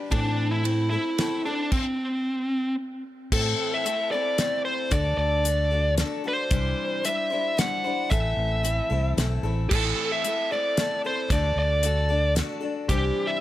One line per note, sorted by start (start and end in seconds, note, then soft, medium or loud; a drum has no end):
0.00 0.12 D4 soft
0.00 0.12 G4 soft
0.00 0.12 B4 medium
0.10 0.65 A2 medium
0.10 0.96 A2 medium
0.10 0.65 E3 medium
0.10 0.63 A3 medium
0.10 0.63 C4 medium
0.10 0.53 D4 medium
0.10 0.64 E4 medium
0.10 0.66 A4 medium
0.10 kick loud
0.10 ride medium
0.51 0.89 E4 loud
0.64 0.91 A3 medium
0.64 0.92 C4 medium
0.64 0.91 E4 medium
0.64 0.90 A4 medium
0.64 ride medium
0.90 1.17 A3 soft
0.90 1.18 C4 soft
0.90 1.41 E4 medium
0.90 1.19 E4 soft
0.90 1.18 A4 soft
1.18 1.45 A3 medium
1.18 1.45 C4 medium
1.18 1.45 E4 medium
1.18 1.44 A4 medium
1.18 snare medium
1.18 ride medium
1.45 1.73 A3 soft
1.45 1.73 C4 soft
1.45 1.72 D4 medium
1.45 1.72 E4 soft
1.45 1.72 A4 soft
1.72 2.75 C4 medium
1.72 kick loud
1.72 crash medium
3.32 3.53 A2 loud
3.32 3.86 A2 medium
3.32 3.86 E3 medium
3.32 3.85 A3 medium
3.32 3.85 C4 medium
3.32 3.86 E4 medium
3.32 3.74 A4 medium
3.32 3.87 A4 medium
3.32 kick loud
3.32 crash loud
3.74 4.11 E5 loud
3.85 4.12 A3 medium
3.85 4.12 C4 medium
3.85 4.12 E4 medium
3.85 4.11 A4 medium
3.85 closed hi-hat medium
4.11 4.37 A3 soft
4.11 4.38 C4 soft
4.11 4.38 E4 soft
4.11 4.39 A4 medium
4.11 4.61 D5 medium
4.38 4.90 A3 medium
4.38 4.91 C4 medium
4.38 4.91 E4 medium
4.38 4.92 A4 medium
4.38 snare medium
4.38 closed hi-hat medium
4.65 4.92 C5 loud
4.91 5.13 D2 loud
4.91 5.44 D3 medium
4.91 5.43 A3 medium
4.91 5.45 D4 medium
4.91 5.44 F#4 medium
4.91 5.45 A4 medium
4.91 5.17 D5 medium
4.91 kick loud
4.91 closed hi-hat medium
5.17 6.02 D2 medium
5.17 5.94 D5 medium
5.44 5.71 A3 medium
5.44 5.72 D4 medium
5.44 5.71 F#4 medium
5.44 5.70 A4 medium
5.44 closed hi-hat medium
5.71 5.97 D4 soft
5.71 5.98 F#4 soft
5.71 5.98 A4 medium
5.97 6.24 A3 medium
5.97 6.25 D4 medium
5.97 6.24 F#4 medium
5.97 6.23 A4 medium
5.97 snare medium
5.97 closed hi-hat medium
6.24 6.50 D4 soft
6.24 6.52 F#4 medium
6.24 6.51 A4 medium
6.28 7.08 C5 medium
6.51 6.72 C2 loud
6.51 7.04 C3 medium
6.51 7.08 E3 medium
6.51 7.02 G3 medium
6.51 7.03 D4 medium
6.51 7.05 E4 medium
6.51 7.06 C5 medium
6.51 kick loud
6.51 closed hi-hat medium
7.03 7.31 G3 medium
7.03 7.31 D4 medium
7.03 7.31 E4 medium
7.03 7.29 C5 medium
7.03 7.60 E5 medium
7.03 closed hi-hat medium
7.30 7.56 G3 soft
7.30 7.57 D4 soft
7.30 7.58 E4 medium
7.30 7.57 C5 medium
7.57 7.84 G3 medium
7.57 7.85 D4 medium
7.57 7.84 E4 medium
7.57 7.83 C5 medium
7.57 8.13 F#5 loud
7.57 snare medium
7.57 closed hi-hat medium
7.84 8.10 G3 soft
7.84 8.10 D4 soft
7.84 8.10 E4 soft
7.84 8.11 C5 soft
8.10 8.32 A1 loud
8.10 8.63 A2 medium
8.10 9.71 E3 medium
8.10 8.63 A3 medium
8.10 8.64 C4 medium
8.10 8.64 E4 medium
8.10 8.65 A4 medium
8.10 9.13 E5 medium
8.10 kick loud
8.10 closed hi-hat medium
8.37 8.79 A1 loud
8.63 8.90 A3 medium
8.63 8.91 C4 medium
8.63 8.90 E4 medium
8.63 8.88 A4 medium
8.63 closed hi-hat medium
8.90 9.15 C2 loud
8.90 9.16 A3 medium
8.90 9.17 C4 medium
8.90 9.17 E4 medium
8.90 9.17 A4 medium
9.17 9.41 B1 medium
9.17 9.44 A3 medium
9.17 9.44 C4 medium
9.17 9.43 E4 medium
9.17 9.42 A4 medium
9.17 snare medium
9.17 closed hi-hat medium
9.43 9.67 A1 medium
9.43 9.71 A3 soft
9.43 9.71 C4 medium
9.43 9.71 E4 medium
9.43 9.70 A4 medium
9.69 9.92 A1 medium
9.69 10.24 A2 medium
9.69 10.24 E3 medium
9.69 10.24 A3 medium
9.69 10.24 C4 medium
9.69 10.25 E4 loud
9.69 10.11 A4 medium
9.69 kick loud
9.69 crash medium
9.73 10.27 A4 medium
10.12 10.52 E5 loud
10.24 10.50 A3 medium
10.24 10.51 C4 medium
10.24 10.51 E4 medium
10.24 10.50 A4 medium
10.24 closed hi-hat medium
10.51 10.77 A3 soft
10.51 10.77 C4 soft
10.51 10.78 E4 soft
10.51 10.77 A4 medium
10.51 11.01 D5 medium
10.77 11.04 A3 medium
10.77 11.04 C4 medium
10.77 11.05 E4 medium
10.77 11.03 A4 medium
10.77 snare medium
10.77 closed hi-hat medium
11.05 11.30 A3 soft
11.05 11.31 C4 soft
11.05 11.31 E4 medium
11.05 11.30 A4 medium
11.05 11.32 C5 loud
11.30 11.51 D2 loud
11.30 11.84 D3 medium
11.30 11.82 A3 medium
11.30 11.83 D4 medium
11.30 11.84 F#4 medium
11.30 11.84 A4 loud
11.30 11.58 D5 medium
11.30 kick loud
11.30 closed hi-hat medium
11.56 12.40 D2 medium
11.56 12.33 D5 loud
11.83 12.09 A3 medium
11.83 12.10 D4 medium
11.83 12.09 F#4 medium
11.83 12.08 A4 medium
11.83 closed hi-hat medium
12.09 12.35 D4 soft
12.09 12.35 F#4 soft
12.09 12.36 A4 medium
12.35 12.62 A3 medium
12.35 12.62 D4 medium
12.35 12.61 F#4 medium
12.35 12.59 A4 medium
12.35 snare medium
12.35 closed hi-hat medium
12.61 12.89 D4 medium
12.61 12.89 F#4 medium
12.61 12.88 A4 medium
12.89 13.10 C2 medium
12.89 13.40 C3 medium
12.89 13.40 E3 medium
12.89 13.40 G3 medium
12.89 13.40 D4 medium
12.89 13.40 E4 loud
12.89 13.30 G4 medium
12.89 13.40 C5 medium
12.89 kick loud
12.89 closed hi-hat medium
13.27 13.40 E5 loud